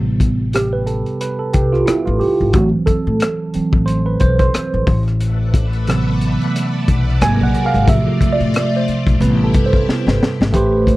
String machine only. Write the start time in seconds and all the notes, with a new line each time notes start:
5.19 A3 A4 B4 D5 E5 F#5
7.21 G#3 F#4 A#4
7.88 A3 F4 D5
9.21 E4 G4